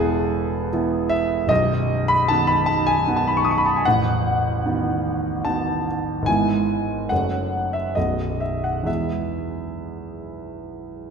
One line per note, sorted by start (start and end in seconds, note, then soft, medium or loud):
0.00 1.45 E1 soft
0.00 1.45 E2 medium
0.00 0.69 E3 soft
0.00 0.69 B3 soft
0.00 0.69 E4 soft
0.00 1.11 G#4 medium
0.00 1.52 A4 medium
0.00 1.52 B4 medium
0.73 1.47 E3 soft
0.73 1.47 B3 soft
0.73 1.47 E4 soft
1.09 1.49 E5 medium
1.47 3.80 B0 medium
1.47 3.81 B1 medium
1.47 2.09 D#5 medium
2.08 2.29 B5 medium
2.28 3.03 D#3 soft
2.28 3.03 B3 soft
2.28 3.03 F#4 soft
2.28 2.48 A5 medium
2.47 2.67 B5 medium
2.66 2.86 A5 medium
2.87 3.16 G#5 medium
3.07 3.81 D#3 soft
3.07 3.82 B3 soft
3.07 3.82 F#4 soft
3.16 3.29 A5 medium
3.27 3.38 B5 medium
3.37 3.45 C#6 medium
3.44 3.52 D#6 medium
3.51 3.59 C#6 medium
3.58 3.66 B5 medium
3.66 3.75 A5 medium
3.76 3.85 G#5 medium
3.85 6.24 A0 soft
3.85 6.24 A1 medium
3.85 5.45 F#5 medium
4.66 5.42 D#3 soft
4.66 5.42 B3 soft
4.66 5.42 F#4 soft
5.45 6.24 D#3 soft
5.45 6.24 B3 soft
5.45 6.24 F#4 soft
5.45 5.86 A5 medium
6.22 7.05 G#1 medium
6.26 7.08 G#2 soft
6.26 7.07 E3 soft
6.26 7.07 B3 soft
6.26 7.07 E4 soft
6.26 7.10 G#5 medium
7.09 7.94 F#1 soft
7.09 7.94 F#2 soft
7.09 7.92 A3 soft
7.09 7.93 C#4 soft
7.09 7.93 F#4 soft
7.09 7.74 F#5 medium
7.73 7.96 E5 medium
7.95 8.85 B0 soft
7.95 8.85 B1 soft
7.95 8.84 A3 soft
7.95 8.84 B3 soft
7.95 8.84 F#4 soft
7.95 8.40 D#5 medium
8.40 8.64 E5 soft
8.64 8.87 F#5 soft
8.83 11.10 E2 soft
8.83 11.10 G#3 soft
8.83 11.10 B3 soft
8.83 11.10 E4 soft
8.83 11.10 E5 medium